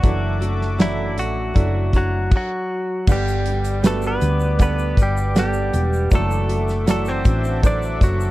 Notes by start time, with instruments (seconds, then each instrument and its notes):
Already playing: clean electric guitar F#4, analog synth pad F#5
0.03 fingered electric bass F#1, steel-string acoustic guitar F#2 E3 A3 D4 E4 F#4, upright piano F#3 D4 E4 A4, analog synth pad A4 E5 D6, kick, closed hi-hat
0.40 steel-string acoustic guitar A3 D4 E4 F#4, closed hi-hat
0.62 snare
0.78 steel-string acoustic guitar F#2 E3 A3 D4 E4 F#4, upright piano F#3 D4 E4 F#4, clean electric guitar E4, snare, closed hi-hat
1.18 fingered electric bass A1, clean electric guitar F#4, closed hi-hat
1.54 fingered electric bass F#1, upright piano F#3 D4 E4 A4, steel-string acoustic guitar A3 D4 E4 F#4, kick, closed hi-hat
1.92 steel-string acoustic guitar A3 D4 E4 F#4, kick, closed hi-hat
1.96 clean electric guitar F#3 F#4
2.32 kick, crash
2.36 clean electric guitar F#3 F#4
3.07 fingered electric bass G1, upright piano G2 D3 G3 B3 D4 B4 F#5, steel-string acoustic guitar G3 B3 D4 G4, analog synth pad B4 D5 F#5 D6, kick, crash, shaker
3.11 clean electric guitar G3 G4
3.28 shaker
3.46 steel-string acoustic guitar D4 G4, closed hi-hat
3.64 closed hi-hat, shaker
3.82 upright piano G3 B3 D4 F#4 B4, clean electric guitar A3, steel-string acoustic guitar B3 D4 F#4 G4, snare, closed hi-hat, shaker
3.87 clean electric guitar A4
4.02 shaker
4.07 clean electric guitar B3 B4
4.21 fingered electric bass D2, steel-string acoustic guitar D4 G4, closed hi-hat, shaker
4.40 shaker
4.58 upright piano G3 B3 D4 A4 F#5, clean electric guitar B3, kick, closed hi-hat, shaker
4.63 clean electric guitar B4
4.79 shaker
4.97 fingered electric bass G1, kick, closed hi-hat, shaker
5.02 clean electric guitar G3 G4
5.17 shaker
5.35 upright piano G3 B3 D4 A4 F#5, clean electric guitar G3, steel-string acoustic guitar B3 D4 G4, snare, closed hi-hat, shaker
5.39 clean electric guitar G4
5.53 shaker
5.74 fingered electric bass E1, steel-string acoustic guitar D4 G4, closed hi-hat, shaker
5.93 shaker
6.10 fingered electric bass F#1, steel-string acoustic guitar F#2 E3 F#3 D4 F#4 A4, upright piano F#3 A3 D4 E4 A4, analog synth pad A4 E5 D6, kick, closed hi-hat, shaker
6.15 clean electric guitar A3 A4
6.31 shaker
6.48 steel-string acoustic guitar E3 D4 F#4 A4, closed hi-hat
6.68 snare, shaker
6.86 steel-string acoustic guitar E3 D4 F#4 A4, upright piano F#3 A3 D4 E4 A4, snare, closed hi-hat, shaker
6.90 clean electric guitar A3 A4
7.05 clean electric guitar C4 C5, shaker
7.24 fingered electric bass A1, steel-string acoustic guitar E3 D4 F#4 A4, kick, closed hi-hat, shaker
7.44 shaker
7.62 upright piano F#3 A3 D4 E4 C5, clean electric guitar D4, kick, closed hi-hat, shaker
7.67 clean electric guitar D5
7.83 shaker
8.01 fingered electric bass F#1, clean electric guitar F#3 F#4, kick, closed hi-hat, shaker
8.20 shaker